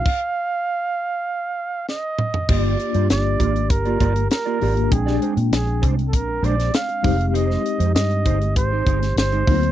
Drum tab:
CC |x---------------|x---------------|----------------|----------------|
HH |----------------|--xxx-xxxxxxxxox|x-xxxxxxx-xxxxox|x-xxxxxxx-xxxxox|
SD |------------o---|----o-------o---|-o--o------oo---|-o--o------oo---|
T2 |--------------o-|----------------|----------------|----------------|
FT |---------------o|----------------|----------------|----------------|
BD |o---------------|o-----o-o-o-----|o-----o-o-----o-|------o-o-o---o-|